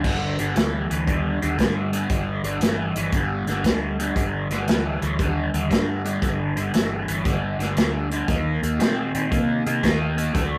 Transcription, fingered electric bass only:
0.04 0.35 G1 medium
0.40 0.54 G1 medium
0.55 0.86 D2 medium
0.90 1.05 D2 medium
1.08 1.38 D#2 medium
1.42 1.57 D#2 medium
1.59 2.04 G2 medium
2.10 2.41 G1 medium
2.43 2.59 G1 medium
2.61 2.92 G1 medium
2.96 3.11 G1 medium
3.13 3.44 G1 medium
3.47 3.62 G1 medium
3.64 4.10 D2 medium
4.16 4.47 G1 medium
4.50 4.65 G1 medium
4.67 4.98 D2 medium
5.02 5.17 D2 medium
5.19 5.50 D#2 medium
5.53 5.68 D#2 medium
5.71 6.16 G2 medium
6.23 6.53 G1 medium
6.57 6.72 G1 medium
6.74 7.04 G1 medium
7.08 7.23 G1 medium
7.25 7.56 G1 medium
7.59 7.74 G1 medium
7.76 8.22 D2 medium
8.28 8.59 D#2 medium
8.62 8.77 D#2 medium
8.79 9.10 A#2 medium
9.14 9.29 A#2 medium
9.32 9.62 C3 medium
9.66 9.81 C3 medium
9.83 10.29 D#2 medium
10.35 10.58 D2 medium

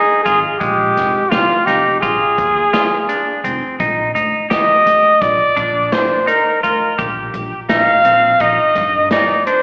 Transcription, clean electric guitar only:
0.00 0.21 D#4 medium
0.26 0.56 F4 medium
0.60 1.22 G#3 medium
1.32 1.62 F4 medium
1.67 1.98 D#4 medium
2.02 2.64 F4 medium
2.73 3.04 F4 medium
3.09 3.40 D4 medium
3.44 3.75 C4 medium
3.80 4.10 D#4 medium
4.15 4.46 D#4 medium
4.50 5.12 G4 medium
5.57 6.18 D4 medium
6.27 6.58 D#4 medium
6.63 6.94 F4 medium
6.98 7.60 G4 medium
7.70 8.00 D#4 medium
8.05 8.35 C4 medium
8.41 9.02 D#4 medium
9.12 9.42 D#4 medium
9.47 9.63 D4 medium

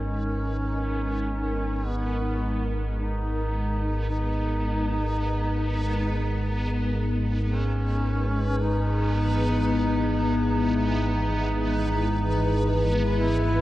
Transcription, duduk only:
0.00 1.88 C#4 medium
1.87 2.72 B3 medium
2.98 4.07 D#4 medium
4.11 6.31 D#4 medium
7.48 8.63 C#4 medium
8.62 10.89 D#4 medium
10.89 12.85 D#4 medium
13.16 13.61 E4 loud

